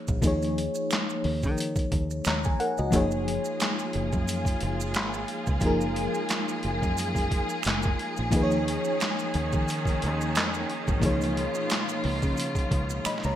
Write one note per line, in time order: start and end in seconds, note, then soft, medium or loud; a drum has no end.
0.00 0.18 F3 medium
0.00 0.19 A#3 medium
0.00 0.20 D#4 medium
0.00 0.20 G#4 medium
0.00 0.24 C#5 medium
0.08 0.21 A#1 medium
0.08 kick loud
0.08 maracas soft
0.22 0.67 D#2 loud
0.22 2.88 F3 medium
0.22 2.89 A#3 medium
0.22 2.89 D#4 medium
0.22 kick loud
0.22 closed hi-hat medium
0.22 maracas medium
0.26 2.22 G#4 medium
0.26 2.23 C#5 medium
0.42 closed hi-hat soft
0.42 maracas soft
0.58 closed hi-hat medium
0.75 maracas soft
0.91 finger snap medium
0.91 snare loud
0.91 clap medium
0.91 closed hi-hat medium
0.91 maracas medium
1.10 maracas soft
1.24 1.46 D#2 medium
1.24 open hi-hat soft
1.43 1.84 D#3 medium
1.43 kick medium
1.43 maracas soft
1.58 closed hi-hat medium
1.58 maracas medium
1.76 kick medium
1.76 closed hi-hat soft
1.76 maracas soft
1.92 2.20 D#2 medium
1.92 kick medium
1.92 closed hi-hat medium
2.10 maracas soft
2.25 2.54 D#2 medium
2.25 2.44 C#5 soft
2.25 2.44 A#5 medium
2.25 finger snap medium
2.25 snare medium
2.25 clap medium
2.25 closed hi-hat medium
2.25 maracas medium
2.44 2.59 G#5 medium
2.44 kick loud
2.44 maracas medium
2.60 2.78 A#4 medium
2.60 2.77 F#5 medium
2.60 closed hi-hat medium
2.77 2.91 C#2 medium
2.77 3.10 F#4 medium
2.77 3.10 D#5 medium
2.77 maracas soft
2.91 3.37 F#1 loud
2.91 5.57 F3 medium
2.91 8.28 G#3 medium
2.91 5.58 A#3 medium
2.91 10.98 A#3 medium
2.91 5.59 D#4 medium
2.91 8.29 F4 medium
2.91 10.98 G#4 medium
2.91 kick loud
2.91 closed hi-hat medium
2.91 maracas medium
2.95 5.60 G#4 medium
2.95 5.60 C#5 medium
3.11 maracas soft
3.28 closed hi-hat medium
3.45 maracas soft
3.60 finger snap medium
3.60 snare medium
3.60 clap medium
3.60 closed hi-hat medium
3.60 maracas medium
3.79 maracas medium
3.93 4.11 F#1 medium
3.93 closed hi-hat medium
4.13 4.54 F#2 medium
4.13 kick medium
4.13 maracas soft
4.28 closed hi-hat medium
4.28 maracas medium
4.45 kick medium
4.45 closed hi-hat soft
4.45 maracas soft
4.61 4.96 F#1 medium
4.61 closed hi-hat medium
4.80 maracas medium
4.94 5.24 G#1 medium
4.94 finger snap medium
4.94 snare loud
4.94 clap medium
4.94 closed hi-hat medium
4.94 maracas medium
5.14 maracas medium
5.28 closed hi-hat medium
5.47 5.60 C#2 medium
5.47 kick medium
5.47 maracas soft
5.61 6.06 F#1 loud
5.61 8.27 F3 medium
5.61 8.28 A#3 medium
5.61 8.28 D#4 medium
5.61 kick loud
5.61 closed hi-hat medium
5.61 maracas medium
5.65 8.29 G#4 medium
5.65 8.30 A#4 medium
5.81 maracas soft
5.96 closed hi-hat medium
6.14 maracas soft
6.29 finger snap medium
6.29 snare medium
6.29 clap medium
6.29 closed hi-hat medium
6.29 maracas medium
6.49 maracas soft
6.63 6.80 F#1 medium
6.63 closed hi-hat medium
6.82 7.39 F#2 medium
6.82 kick medium
6.82 maracas soft
6.97 closed hi-hat medium
6.97 maracas medium
7.15 kick medium
7.15 closed hi-hat soft
7.15 maracas soft
7.31 kick medium
7.31 closed hi-hat medium
7.49 maracas medium
7.63 7.94 F#1 loud
7.63 finger snap medium
7.63 closed hi-hat medium
7.63 maracas medium
7.67 snare loud
7.67 clap medium
7.83 kick medium
7.83 maracas soft
7.99 closed hi-hat medium
8.17 8.30 A#1 medium
8.17 maracas soft
8.31 8.76 D#2 loud
8.31 13.36 D#3 medium
8.31 10.97 F3 medium
8.31 10.98 A#3 medium
8.31 13.36 C#4 medium
8.31 10.98 D#4 medium
8.31 kick loud
8.31 closed hi-hat medium
8.31 maracas medium
8.35 10.99 G#4 medium
8.35 8.41 B4 medium
8.43 11.03 C#5 medium
8.51 maracas soft
8.68 closed hi-hat medium
8.84 maracas soft
9.00 finger snap medium
9.00 snare loud
9.00 clap medium
9.00 closed hi-hat medium
9.00 maracas medium
9.19 maracas medium
9.34 9.50 D#2 medium
9.34 closed hi-hat medium
9.53 10.05 D#3 medium
9.53 kick medium
9.53 maracas soft
9.68 closed hi-hat medium
9.68 maracas medium
9.85 kick medium
9.85 closed hi-hat soft
9.85 maracas soft
10.02 10.37 D#2 medium
10.02 closed hi-hat medium
10.21 maracas soft
10.35 10.64 F2 medium
10.35 finger snap medium
10.35 snare loud
10.35 clap medium
10.35 closed hi-hat medium
10.35 maracas medium
10.54 maracas soft
10.70 closed hi-hat medium
10.88 11.00 G#1 medium
10.88 kick loud
10.88 maracas soft
11.00 11.46 C#2 loud
11.00 13.36 B2 medium
11.00 11.08 E3 medium
11.00 13.36 A#3 medium
11.00 13.36 D#4 medium
11.00 13.36 F4 medium
11.00 kick loud
11.00 closed hi-hat medium
11.00 maracas medium
11.05 13.36 F3 medium
11.05 13.01 G#4 medium
11.05 13.02 C#5 medium
11.21 closed hi-hat soft
11.21 maracas soft
11.37 closed hi-hat medium
11.54 maracas soft
11.70 finger snap medium
11.70 snare medium
11.70 clap medium
11.70 closed hi-hat medium
11.70 maracas medium
11.89 maracas soft
12.04 12.20 C#2 medium
12.04 open hi-hat soft
12.22 12.63 C#3 medium
12.22 kick medium
12.22 maracas soft
12.37 closed hi-hat medium
12.37 maracas medium
12.55 kick medium
12.55 closed hi-hat soft
12.55 maracas soft
12.71 12.99 C#2 medium
12.71 kick medium
12.71 closed hi-hat medium
12.90 maracas medium
13.05 13.23 D#5 soft
13.05 13.23 B5 medium
13.05 finger snap medium
13.05 muted fingered electric bass stroke soft
13.05 snare soft
13.05 closed hi-hat medium
13.05 maracas medium
13.18 snare soft
13.23 13.36 C#2 medium
13.23 13.36 C#5 medium
13.23 13.36 A#5 medium
13.23 maracas medium